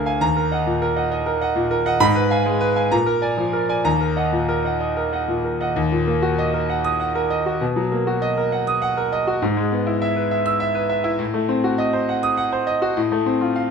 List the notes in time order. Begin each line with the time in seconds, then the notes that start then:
Already playing: D2 D3 A#4 F5 G#5 A#5
0.06 F5 G#5
0.21 D#2 A#5
0.36 A#4
0.51 D#5 F#5
0.66 A#2
0.82 A#4
0.96 D#5 F#5
1.12 D#5
1.26 A#4
1.41 D#5 F#5
1.56 A#2
1.71 A#4
1.86 D#5 F#5
2.00 G#2 B5
2.15 B4
2.31 F5 G#5
2.46 G#3
2.61 B4
2.76 F5 G#5
2.92 A#2 A#5
3.06 A#4
3.22 D5 G#5
3.37 F3
3.53 A#4
3.69 D5 G#5
3.85 D#2 A#5
4.01 A#4
4.17 D#5 F#5
4.32 A#2
4.49 A#4
4.65 D#5 F#5
4.81 D#5
4.97 A#4
5.13 D#5 F#5
5.28 A#2
5.44 A#4
5.60 D#5 F#5
5.76 D#2
5.91 A#2
6.07 A#3
6.22 F#4
6.39 D#5
6.54 A#4
6.70 F#5
6.84 D#6
7.00 F#5
7.15 A#4
7.30 D#5
7.46 F#4
7.61 B2
7.76 F#3
7.92 A#3
8.07 F#4
8.22 D#5
8.37 A#4
8.52 F#5
8.67 D#6
8.82 F#5
8.97 A#4
9.12 D#5
9.27 F#4
9.42 G#2
9.57 G#3
9.72 B3
9.87 E4
10.02 E5
10.16 B4
10.31 E5
10.46 E6
10.60 E5
10.75 B4
10.89 E5
11.04 E4
11.19 A2
11.34 A3
11.49 C4
11.64 F#4
11.78 D#5
11.93 C5
12.09 F#5
12.23 D#6
12.37 F#5
12.52 C5
12.67 D#5
12.82 F#4
12.97 A2
13.12 A3
13.26 C4
13.41 F4
13.56 F5